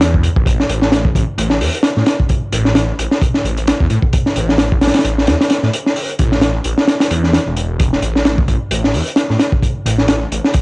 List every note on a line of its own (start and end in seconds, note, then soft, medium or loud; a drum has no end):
0.00 0.28 E2 loud
0.00 snare loud
0.00 closed hi-hat medium
0.14 kick medium
0.23 closed hi-hat medium
0.36 0.63 A1 medium
0.36 kick loud
0.46 kick loud
0.46 closed hi-hat medium
0.60 snare soft
0.69 1.09 A1 loud
0.69 closed hi-hat medium
0.82 snare medium
0.92 snare loud
0.92 closed hi-hat medium
1.05 kick medium
1.15 1.23 A1 medium
1.15 kick medium
1.15 closed hi-hat medium
1.38 1.62 A1 loud
1.38 closed hi-hat medium
1.50 snare medium
1.61 1.69 E2 medium
1.61 open hi-hat medium
1.75 closed hi-hat soft
1.83 snare loud
1.83 closed hi-hat medium
1.97 2.03 A2 loud
1.97 snare soft
2.06 snare loud
2.06 closed hi-hat medium
2.20 kick medium
2.29 kick medium
2.29 closed hi-hat medium
2.52 2.92 A1 medium
2.52 closed hi-hat medium
2.65 snare soft
2.75 snare loud
2.75 closed hi-hat loud
2.98 3.06 A1 medium
2.98 closed hi-hat medium
3.11 snare medium
3.22 kick loud
3.22 closed hi-hat medium
3.34 snare soft
3.44 3.72 A1 medium
3.44 closed hi-hat medium
3.57 closed hi-hat soft
3.67 snare loud
3.67 closed hi-hat medium
3.80 3.86 E2 medium
3.80 kick medium
3.90 3.98 A2 loud
3.90 closed hi-hat medium
4.02 kick loud
4.13 kick loud
4.13 closed hi-hat medium
4.26 snare soft
4.36 4.76 A1 loud
4.36 closed hi-hat medium
4.49 snare soft
4.58 snare loud
4.58 closed hi-hat medium
4.72 kick loud
4.81 4.90 A1 medium
4.81 snare medium
4.81 closed hi-hat medium
4.87 snare medium
4.87 closed hi-hat medium
4.94 snare medium
4.94 closed hi-hat medium
4.99 snare medium
4.99 closed hi-hat medium
5.05 5.29 A1 loud
5.05 closed hi-hat medium
5.18 snare soft
5.27 5.35 E2 medium
5.27 snare loud
5.27 closed hi-hat medium
5.41 snare loud
5.41 closed hi-hat medium
5.50 snare loud
5.50 closed hi-hat medium
5.63 5.69 A2 loud
5.63 snare soft
5.73 closed hi-hat medium
5.86 snare soft
5.96 open hi-hat medium
6.09 closed hi-hat soft
6.19 6.59 A1 loud
6.19 kick medium
6.19 closed hi-hat medium
6.32 snare soft
6.41 snare loud
6.41 closed hi-hat medium
6.64 6.73 A1 medium
6.64 closed hi-hat medium
6.78 snare medium
6.88 snare loud
6.88 closed hi-hat medium
7.00 snare loud
7.00 closed hi-hat medium
7.11 7.39 E2 loud
7.11 closed hi-hat medium
7.24 snare soft
7.33 snare loud
7.33 closed hi-hat medium
7.47 7.96 E1 medium
7.57 closed hi-hat medium
7.80 kick loud
7.80 closed hi-hat medium
7.93 snare soft
8.02 8.42 A1 medium
8.02 closed hi-hat medium
8.16 snare soft
8.25 snare loud
8.25 closed hi-hat medium
8.38 kick loud
8.48 8.56 A1 medium
8.48 kick medium
8.48 closed hi-hat medium
8.71 8.95 A1 loud
8.71 closed hi-hat medium
8.84 snare medium
8.94 9.02 E2 medium
8.94 open hi-hat medium
9.08 closed hi-hat soft
9.16 snare loud
9.16 closed hi-hat medium
9.30 9.36 A2 loud
9.30 snare soft
9.39 snare loud
9.39 closed hi-hat medium
9.52 kick medium
9.63 kick medium
9.63 closed hi-hat medium
9.85 10.25 A1 medium
9.85 closed hi-hat medium
9.98 snare soft
10.08 snare loud
10.08 closed hi-hat medium
10.31 10.39 A1 medium
10.31 closed hi-hat medium
10.44 snare medium
10.54 kick loud
10.54 closed hi-hat medium